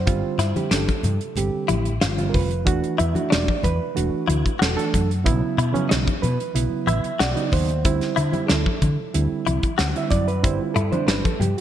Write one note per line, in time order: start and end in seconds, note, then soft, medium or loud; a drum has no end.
0.00 0.68 C5 medium
0.06 0.21 G1 loud
0.06 0.39 D3 medium
0.06 0.39 G3 medium
0.06 0.39 C4 medium
0.06 0.39 F4 medium
0.06 kick loud
0.06 closed hi-hat medium
0.38 0.52 G2 medium
0.38 0.63 E4 medium
0.38 snare soft
0.38 closed hi-hat medium
0.56 0.88 D3 medium
0.56 0.88 G3 medium
0.56 0.88 C4 medium
0.56 0.88 G4 medium
0.56 closed hi-hat soft
0.56 high conga medium
0.71 0.85 G1 medium
0.71 0.95 D4 medium
0.71 1.66 A4 medium
0.71 snare loud
0.71 closed hi-hat medium
0.88 kick medium
0.88 closed hi-hat soft
0.88 high conga medium
1.03 1.18 G2 medium
1.03 1.12 C4 soft
1.03 1.13 E4 soft
1.03 closed hi-hat medium
1.03 high conga medium
1.03 low conga medium
1.21 closed hi-hat soft
1.36 1.51 G1 medium
1.36 1.91 D3 medium
1.36 1.91 G3 medium
1.36 1.91 C4 medium
1.36 1.91 G4 medium
1.36 closed hi-hat medium
1.36 low conga medium
1.55 muted fretless electric bass stroke soft
1.68 1.99 A1 medium
1.68 1.93 E4 medium
1.68 closed hi-hat medium
1.68 high conga medium
1.85 closed hi-hat soft
2.01 2.31 G1 medium
2.01 2.26 F4 medium
2.01 snare loud
2.01 closed hi-hat medium
2.18 2.50 D3 medium
2.18 2.50 G3 medium
2.18 2.51 C4 medium
2.18 2.51 F4 medium
2.18 closed hi-hat soft
2.18 high conga soft
2.29 2.34 A#4 medium
2.34 2.67 F1 medium
2.34 2.95 B4 medium
2.34 kick medium
2.34 open hi-hat medium
2.34 low conga medium
2.51 closed hi-hat soft
2.65 2.80 E1 loud
2.65 2.98 E3 medium
2.65 2.98 A3 medium
2.65 2.98 D4 medium
2.65 2.99 F#4 loud
2.65 kick loud
2.65 closed hi-hat medium
2.84 closed hi-hat soft
2.98 3.13 E2 medium
2.98 3.23 E4 medium
2.98 3.30 E5 medium
2.98 closed hi-hat medium
2.98 low conga medium
3.14 3.47 E3 medium
3.14 3.47 A3 medium
3.14 3.47 D4 medium
3.14 3.47 F#4 medium
3.14 closed hi-hat soft
3.14 high conga medium
3.30 3.46 E1 medium
3.30 3.55 D4 medium
3.30 3.64 D5 medium
3.30 snare loud
3.30 closed hi-hat medium
3.48 kick medium
3.48 high conga medium
3.63 3.78 E2 medium
3.63 3.71 D4 soft
3.63 3.72 F#4 soft
3.63 4.57 B4 medium
3.63 kick medium
3.63 closed hi-hat medium
3.63 high conga medium
3.63 low conga medium
3.95 4.10 E1 medium
3.95 4.50 E3 medium
3.95 4.50 A3 medium
3.95 4.50 D4 medium
3.95 4.50 F#4 medium
3.95 closed hi-hat medium
4.14 muted fretless electric bass stroke soft
4.28 4.43 D2 medium
4.28 4.52 E4 medium
4.28 closed hi-hat medium
4.28 high conga medium
4.46 kick medium
4.46 closed hi-hat soft
4.59 4.75 E1 medium
4.59 4.84 F#4 medium
4.59 4.76 A4 medium
4.59 snare loud
4.59 closed hi-hat medium
4.76 5.09 E3 medium
4.76 5.09 A3 medium
4.76 5.09 D4 medium
4.76 5.09 A4 medium
4.76 closed hi-hat soft
4.94 5.28 F#2 medium
4.94 kick medium
4.94 closed hi-hat medium
4.94 low conga medium
5.11 closed hi-hat soft
5.24 5.40 B1 loud
5.24 5.57 C#3 medium
5.24 5.57 F#3 medium
5.24 5.58 B3 medium
5.24 5.58 E4 loud
5.24 kick loud
5.24 closed hi-hat medium
5.58 5.72 B2 medium
5.58 5.82 E4 medium
5.58 closed hi-hat medium
5.58 low conga soft
5.73 6.06 C#3 medium
5.73 6.06 F#3 medium
5.73 6.06 B3 medium
5.73 6.07 C#4 loud
5.73 closed hi-hat soft
5.73 high conga medium
5.89 6.05 B1 medium
5.89 6.14 D#4 medium
5.89 snare loud
5.89 closed hi-hat medium
6.07 kick medium
6.07 closed hi-hat soft
6.07 high conga medium
6.22 6.37 B2 medium
6.22 6.30 B3 soft
6.22 6.31 E4 soft
6.22 6.83 B4 medium
6.22 closed hi-hat medium
6.22 high conga medium
6.22 low conga medium
6.40 closed hi-hat soft
6.54 6.69 B1 medium
6.54 7.09 C#3 medium
6.54 7.09 F#3 medium
6.54 7.09 B3 medium
6.54 7.09 E4 medium
6.54 closed hi-hat medium
6.72 muted fretless electric bass stroke soft
6.87 7.01 A1 medium
6.87 7.11 E4 medium
6.87 7.19 E5 loud
6.87 closed hi-hat medium
6.87 high conga medium
7.04 muted fretless electric bass stroke soft
7.04 closed hi-hat soft
7.19 7.33 B1 medium
7.19 7.43 F#4 medium
7.19 7.52 D5 medium
7.19 snare loud
7.19 closed hi-hat medium
7.35 7.68 C#3 medium
7.35 7.68 F#3 medium
7.35 7.68 B3 medium
7.35 7.68 D#4 medium
7.35 closed hi-hat soft
7.52 7.86 D#2 loud
7.52 8.46 C5 medium
7.52 kick medium
7.52 open hi-hat medium
7.52 low conga medium
7.69 closed hi-hat soft
7.85 7.99 D2 loud
7.85 8.17 D3 medium
7.85 8.17 G3 medium
7.85 8.17 C4 medium
7.85 8.17 E4 loud
7.85 kick loud
7.85 closed hi-hat medium
8.01 snare soft
8.01 closed hi-hat soft
8.16 8.31 D3 medium
8.16 8.40 E4 medium
8.16 closed hi-hat medium
8.16 low conga medium
8.32 8.65 D3 medium
8.32 8.65 G3 medium
8.32 8.65 C4 medium
8.32 8.65 E4 medium
8.32 closed hi-hat soft
8.32 high conga medium
8.46 8.73 D4 medium
8.46 8.50 G#4 soft
8.46 snare loud
8.46 closed hi-hat medium
8.50 8.63 D2 medium
8.50 9.43 A4 medium
8.66 kick medium
8.66 high conga medium
8.81 8.95 D3 medium
8.81 8.90 C4 soft
8.81 8.89 E4 soft
8.81 kick medium
8.81 closed hi-hat medium
8.81 high conga medium
8.81 low conga medium
9.14 9.28 D2 medium
9.14 9.68 D3 medium
9.14 9.68 G3 medium
9.14 9.68 C4 medium
9.14 9.68 E4 medium
9.14 closed hi-hat medium
9.32 muted fretless electric bass stroke soft
9.47 9.60 C2 medium
9.47 9.70 E4 medium
9.47 closed hi-hat medium
9.47 high conga medium
9.63 kick medium
9.63 closed hi-hat soft
9.78 9.93 D2 loud
9.78 10.02 F#4 medium
9.78 snare loud
9.78 closed hi-hat medium
9.96 10.27 D3 medium
9.96 10.27 G3 medium
9.96 10.28 C4 medium
9.96 10.28 E4 medium
9.96 10.12 E5 loud
9.96 closed hi-hat soft
10.10 10.46 F#2 medium
10.10 10.27 D5 loud
10.10 kick medium
10.10 closed hi-hat medium
10.10 low conga medium
10.28 10.43 B4 medium
10.28 closed hi-hat soft
10.43 10.57 G1 loud
10.43 10.75 D3 medium
10.43 10.75 G3 medium
10.43 10.75 C4 medium
10.43 10.76 E4 loud
10.43 10.60 C5 medium
10.43 kick loud
10.43 closed hi-hat medium
10.62 10.76 F4 medium
10.74 10.89 G2 loud
10.74 10.99 E4 medium
10.74 10.91 A4 medium
10.74 closed hi-hat medium
10.74 low conga medium
10.92 11.24 D3 medium
10.92 11.24 G3 medium
10.92 11.24 C4 medium
10.92 11.25 D4 medium
10.92 11.07 C5 medium
10.92 closed hi-hat soft
10.92 high conga medium
11.07 11.21 G1 medium
11.07 11.32 D4 medium
11.07 11.23 B4 medium
11.07 snare loud
11.07 closed hi-hat medium
11.25 11.40 A4 medium
11.25 kick medium
11.25 closed hi-hat soft
11.25 high conga medium
11.40 11.53 G2 medium
11.40 11.48 C4 soft
11.40 11.56 G4 medium
11.40 closed hi-hat medium
11.40 high conga medium
11.40 low conga medium
11.57 11.61 F#4 medium